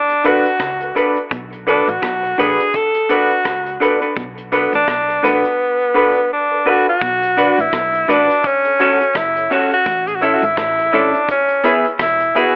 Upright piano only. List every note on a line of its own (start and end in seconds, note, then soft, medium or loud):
0.24 0.45 D4 medium
0.24 0.46 F#4 medium
0.24 0.46 A4 medium
0.24 0.46 B4 loud
0.81 0.87 A4 soft
0.81 0.87 B4 soft
0.95 1.17 D4 medium
0.95 1.17 F#4 medium
0.95 1.17 A4 medium
0.95 1.17 B4 loud
1.66 1.88 D4 medium
1.66 1.88 F#4 medium
1.66 1.88 A4 medium
1.66 1.89 B4 medium
2.38 2.60 D4 medium
2.38 2.60 F#4 medium
2.38 2.60 A4 medium
2.38 2.60 B4 loud
3.09 3.31 D4 medium
3.09 3.31 F#4 medium
3.09 3.31 A4 medium
3.09 3.31 B4 medium
3.81 4.02 D4 medium
3.81 4.02 F#4 medium
3.81 4.03 A4 medium
3.81 4.03 B4 medium
4.52 4.73 D4 medium
4.52 4.74 F#4 medium
4.52 4.74 A4 medium
4.52 4.74 B4 medium
5.23 5.45 D4 medium
5.23 5.45 F#4 medium
5.23 5.45 A4 medium
5.23 5.45 B4 medium
5.94 6.16 D4 medium
5.94 6.16 F#4 medium
5.94 6.16 A4 medium
5.94 6.17 B4 loud
6.51 6.57 A4 soft
6.51 6.57 B4 soft
6.66 6.87 D4 medium
6.66 6.87 F#4 medium
6.66 6.88 A4 medium
6.66 6.88 B4 medium
7.37 7.58 D4 medium
7.37 7.59 F#4 medium
7.37 7.59 B4 medium
7.37 7.59 D5 medium
8.08 8.29 D4 medium
8.08 8.30 F#4 medium
8.08 8.30 B4 medium
8.08 8.30 D5 loud
8.65 8.71 A4 soft
8.65 8.71 C#5 soft
8.79 9.01 C#4 medium
8.79 9.01 F#4 medium
8.79 9.01 A4 medium
8.79 9.01 C#5 loud
9.36 9.42 A4 soft
9.36 9.42 C#5 soft
9.50 9.72 C#4 medium
9.50 9.72 F#4 medium
9.50 9.72 A4 medium
9.50 9.72 C#5 loud
10.21 10.43 E4 medium
10.21 10.43 A4 medium
10.21 10.43 C#5 medium
10.21 10.43 E5 loud
10.92 11.14 E4 medium
10.92 11.14 A4 medium
10.92 11.14 C#5 medium
10.92 11.14 E5 loud
11.64 11.85 E4 loud
11.64 11.85 G#4 medium
11.64 11.85 B4 medium
11.64 11.86 E5 loud
12.35 12.56 E4 medium
12.35 12.56 G#4 medium
12.35 12.54 B4 medium
12.35 12.54 E5 loud